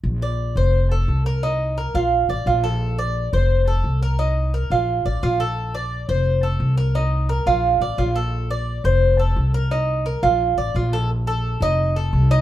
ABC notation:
X:1
M:4/4
L:1/8
Q:1/4=174
K:Bb
V:1 name="Cuban tres"
z d2 c2 A2 B | E2 B F2 d F A- | A d2 c2 A2 B | E2 B F2 d F A- |
A d2 c2 A2 B | E2 B F2 d F A- | A d2 c2 A2 B | E2 B F2 d F A |
z A2 E2 A2 E |]
V:2 name="Upright bass" clef=bass
B,,,3 F,,,3 C,,2- | C,,3 B,,,2 A,,, B,,,2- | B,,,3 F,,,3 C,,2- | C,,3 B,,,2 A,,, B,,,2- |
B,,,3 F,,,3 C,,2- | C,,3 B,,,2 A,,, B,,,2- | B,,,3 F,,,3 C,,2- | C,,3 B,,,2 A,,, B,,,2- |
B,,,3 F,,,3 C,,2 |]